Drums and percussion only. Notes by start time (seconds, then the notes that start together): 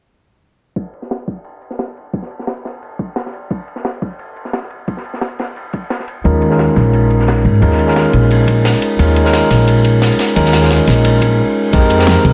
0.76 kick, closed hi-hat, ride
0.93 closed hi-hat, ride
1.02 snare
1.10 snare, open hi-hat
1.20 ride
1.27 kick, closed hi-hat, ride
1.44 closed hi-hat, ride
1.62 closed hi-hat, ride
1.70 snare
1.78 snare, ride
1.88 snare
1.96 closed hi-hat, ride
2.05 ride
2.13 kick, closed hi-hat, ride
2.22 snare
2.31 closed hi-hat, ride
2.39 snare
2.47 snare, ride
2.57 ride
2.65 snare, closed hi-hat, ride
2.82 closed hi-hat, ride
2.99 kick, closed hi-hat, ride
3.16 snare, closed hi-hat, ride
3.26 snare
3.33 closed hi-hat, ride
3.51 kick, closed hi-hat, ride
3.68 closed hi-hat, ride
3.76 snare
3.85 snare, closed hi-hat, open hi-hat
3.94 ride
4.02 kick, closed hi-hat, ride
4.19 closed hi-hat, ride
4.36 closed hi-hat, ride
4.45 snare
4.53 snare, closed hi-hat, ride
4.63 snare
4.70 closed hi-hat, ride
4.80 ride
4.88 kick, closed hi-hat, ride
4.97 snare
5.05 closed hi-hat, ride
5.14 snare
5.21 snare, closed hi-hat, ride
5.31 ride
5.39 snare, closed hi-hat, open hi-hat
5.56 closed hi-hat, ride
5.73 kick, closed hi-hat, ride
5.90 snare, closed hi-hat, ride
6.00 snare
6.08 closed hi-hat, ride
6.25 kick, closed hi-hat, ride
6.41 closed hi-hat, ride
6.51 snare
6.59 snare, closed hi-hat, open hi-hat
6.68 ride
6.76 kick, snare, closed hi-hat, ride
6.93 closed hi-hat, ride
7.11 closed hi-hat, ride
7.19 snare
7.28 snare, closed hi-hat, ride
7.37 snare
7.45 closed hi-hat, ride
7.55 ride
7.62 kick, closed hi-hat, ride
7.71 snare
7.79 closed hi-hat, ride
7.88 snare
7.96 snare, closed hi-hat, ride
8.05 ride
8.13 closed hi-hat, ride
8.31 closed hi-hat, ride
8.48 kick, closed hi-hat, ride
8.65 snare, closed hi-hat, ride
8.73 snare
8.82 closed hi-hat, ride
8.99 kick, closed hi-hat, ride
9.16 closed hi-hat, ride
9.25 snare
9.33 snare, closed hi-hat, open hi-hat
9.42 ride
9.50 kick, snare, closed hi-hat, ride
9.68 closed hi-hat, ride
9.84 closed hi-hat, ride
10.02 snare, closed hi-hat, ride
10.11 snare
10.19 snare, closed hi-hat, open hi-hat
10.28 ride
10.36 kick, closed hi-hat, ride
10.45 snare
10.53 snare, closed hi-hat, open hi-hat
10.63 snare
10.71 snare, closed hi-hat, open hi-hat
10.79 ride
10.88 kick, snare, closed hi-hat, ride
11.05 closed hi-hat, ride
11.22 kick, closed hi-hat, ride
11.73 kick, closed hi-hat, ride
11.90 closed hi-hat, ride
11.99 snare
12.07 snare, closed hi-hat, open hi-hat
12.16 ride
12.25 kick, closed hi-hat, ride